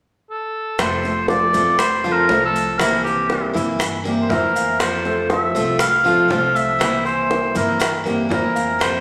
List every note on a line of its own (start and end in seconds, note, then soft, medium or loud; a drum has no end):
0.30 0.81 A4 medium
0.79 1.50 F1 medium
0.79 1.53 C3 medium
0.79 1.53 F3 medium
0.79 1.54 A3 medium
0.79 1.55 C4 medium
0.79 1.53 F4 medium
0.79 1.28 C5 loud
0.79 high bongo medium
0.79 maracas medium
1.03 1.25 A3 medium
1.03 1.25 A4 medium
1.03 1.25 C5 medium
1.03 high bongo soft
1.03 maracas soft
1.28 1.50 F3 medium
1.28 1.50 F4 medium
1.28 1.76 D5 loud
1.28 1.50 F5 medium
1.28 high bongo medium
1.28 maracas soft
1.53 2.26 F2 medium
1.53 1.79 F3 medium
1.53 1.95 A3 medium
1.53 1.79 A3 medium
1.53 1.79 C4 medium
1.53 1.78 F4 medium
1.53 1.95 A4 medium
1.53 1.96 C5 medium
1.53 high bongo soft
1.53 maracas medium
1.78 2.13 C5 medium
1.78 muted steel-string acoustic guitar stroke medium
1.78 high bongo medium
1.78 maracas medium
2.04 2.25 F3 medium
2.04 2.28 F3 medium
2.04 2.28 A3 medium
2.04 2.29 C4 medium
2.04 2.28 F4 medium
2.04 2.25 F4 medium
2.04 2.25 F5 medium
2.04 high bongo soft
2.04 maracas soft
2.12 2.44 A#4 medium
2.29 3.48 C2 medium
2.29 2.78 F3 soft
2.29 2.70 A3 medium
2.29 2.79 A3 medium
2.29 2.79 C4 medium
2.29 2.79 F4 medium
2.29 2.71 A4 medium
2.29 2.71 C5 medium
2.29 high bongo soft
2.29 low bongo medium
2.29 maracas soft
2.45 2.80 A4 medium
2.56 maracas medium
2.78 3.53 C3 medium
2.78 3.54 E3 medium
2.78 3.21 E3 medium
2.78 3.54 A#3 medium
2.78 3.54 C4 medium
2.78 3.21 E4 medium
2.78 3.52 E4 medium
2.78 3.03 A#4 medium
2.78 3.21 E5 medium
2.78 high bongo medium
2.78 maracas medium
3.04 3.51 G4 medium
3.04 high bongo soft
3.04 maracas soft
3.30 3.50 G3 medium
3.30 3.50 G4 medium
3.30 3.50 A#4 medium
3.30 high bongo medium
3.30 maracas soft
3.53 4.26 G2 medium
3.53 3.96 E3 medium
3.53 3.78 E3 medium
3.53 3.78 A#3 medium
3.53 3.78 C4 medium
3.53 3.78 E4 medium
3.53 3.96 E4 medium
3.53 3.96 E5 medium
3.53 high bongo soft
3.53 maracas medium
3.79 muted steel-string acoustic guitar stroke medium
3.79 high bongo medium
3.79 maracas medium
4.04 4.27 E3 medium
4.04 4.25 G3 medium
4.04 4.28 A#3 medium
4.04 4.29 C4 medium
4.04 4.28 E4 medium
4.04 4.25 G4 medium
4.04 4.26 A#4 medium
4.04 high bongo soft
4.04 maracas soft
4.22 4.31 C5 medium
4.29 5.48 F2 medium
4.29 4.78 E3 soft
4.29 4.50 E3 medium
4.29 4.79 A#3 soft
4.29 4.79 C4 medium
4.29 4.50 E4 medium
4.29 4.79 E4 medium
4.29 4.81 A#4 medium
4.29 4.51 E5 medium
4.29 high bongo soft
4.29 low bongo medium
4.29 maracas soft
4.56 4.96 F5 medium
4.56 maracas medium
4.79 5.54 C3 medium
4.79 5.54 F3 medium
4.79 5.54 A3 medium
4.79 5.55 C4 medium
4.79 5.53 F4 medium
4.79 5.30 C5 medium
4.79 high bongo medium
4.79 maracas medium
5.05 5.26 A3 medium
5.05 5.26 A4 medium
5.05 5.26 C5 medium
5.05 high bongo soft
5.05 maracas soft
5.30 5.51 F3 medium
5.30 5.51 F4 medium
5.30 5.77 E5 medium
5.30 5.51 F5 medium
5.30 high bongo medium
5.30 maracas soft
5.55 6.26 C2 medium
5.55 5.79 F3 medium
5.55 5.96 A3 medium
5.55 5.79 A3 medium
5.55 5.79 C4 medium
5.55 5.79 F4 medium
5.55 5.96 A4 medium
5.55 5.96 C5 medium
5.55 high bongo soft
5.55 maracas medium
5.79 6.26 F5 loud
5.79 muted steel-string acoustic guitar stroke medium
5.79 high bongo medium
5.79 maracas medium
6.04 6.25 F3 medium
6.04 6.27 F3 medium
6.04 6.28 A3 medium
6.04 6.29 C4 medium
6.04 6.28 F4 medium
6.04 6.26 F4 medium
6.04 6.26 F5 medium
6.04 high bongo soft
6.04 maracas soft
6.28 7.48 C2 medium
6.28 6.78 F3 medium
6.28 6.78 A3 medium
6.28 6.71 A3 medium
6.28 6.79 C4 medium
6.28 6.79 F4 medium
6.28 6.71 A4 medium
6.28 6.72 C5 medium
6.28 6.57 F5 medium
6.28 high bongo soft
6.28 low bongo medium
6.28 maracas soft
6.55 7.05 E5 loud
6.55 maracas medium
6.79 7.53 C3 medium
6.79 7.54 E3 medium
6.79 7.21 E3 medium
6.79 7.54 A#3 medium
6.79 7.55 C4 medium
6.79 7.21 E4 medium
6.79 7.53 E4 medium
6.79 7.21 E5 medium
6.79 high bongo medium
6.79 maracas medium
7.05 7.52 C5 medium
7.05 high bongo soft
7.05 maracas soft
7.30 7.51 G3 medium
7.30 7.51 G4 medium
7.30 7.51 A#4 medium
7.30 high bongo medium
7.30 maracas soft
7.55 8.26 G2 medium
7.55 7.96 E3 medium
7.55 7.78 E3 medium
7.55 7.79 A#3 medium
7.55 7.79 C4 medium
7.55 7.79 E4 medium
7.55 7.96 E4 medium
7.55 8.02 A#4 medium
7.55 7.96 E5 medium
7.55 high bongo soft
7.55 maracas medium
7.79 muted steel-string acoustic guitar stroke medium
7.79 high bongo medium
7.79 maracas medium
8.04 8.28 E3 medium
8.04 8.25 G3 medium
8.04 8.29 A#3 medium
8.04 8.29 C4 medium
8.04 8.28 E4 medium
8.04 8.26 G4 medium
8.04 8.26 A#4 medium
8.04 high bongo soft
8.04 maracas soft
8.29 9.00 F2 loud
8.29 8.78 E3 medium
8.29 8.50 E3 medium
8.29 8.79 A#3 medium
8.29 8.79 C4 medium
8.29 8.51 E4 medium
8.29 8.80 E4 medium
8.29 8.83 A#4 medium
8.29 8.50 E5 medium
8.29 high bongo soft
8.29 low bongo medium
8.29 maracas soft
8.55 8.96 F5 medium
8.55 maracas medium
8.79 9.00 C3 medium
8.79 9.00 F3 medium
8.79 9.00 A3 medium
8.79 9.00 C4 medium
8.79 9.00 F4 medium
8.79 9.00 C5 medium
8.79 high bongo medium
8.79 maracas medium